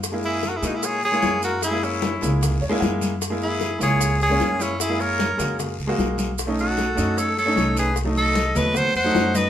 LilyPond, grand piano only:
<<
  \new Staff \with { instrumentName = "Grand piano" } { \time 4/4 \key fis \mixolydian \tempo 4 = 151 r1 | r2 r8 cis''8 fis''4 | r1 | r1 |
r1 | r1 | }
  \new Staff \with { instrumentName = "Grand piano" } { \time 4/4 \key fis \mixolydian r16 <gis ais e'>8. r8 <gis ais e'>4 r16 <gis ais e'>4 r16 | r16 <gis ais e'>8. r8 <gis ais e'>4 r16 <gis ais e'>4 r16 | r16 <gis ais e'>8. r8 <gis ais e'>4 r16 <gis ais cis'>4 r16 | r16 <gis ais e'>8. r8 <gis ais fis'>4 r16 <gis ais fis'>4 r16 |
r16 <a cis' dis'>8. r8 <a cis' dis'>4 r16 <a cis' dis'>4 r16 | r16 <ges a ees'>8. r8 <ges a b>4 r16 <ges a ees'>4 r16 | }
>>